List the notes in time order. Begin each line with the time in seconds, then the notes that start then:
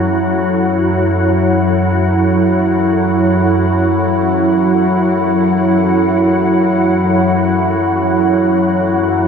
Already playing: F#2 F#3 E4 F#4 A4 C#5 F#5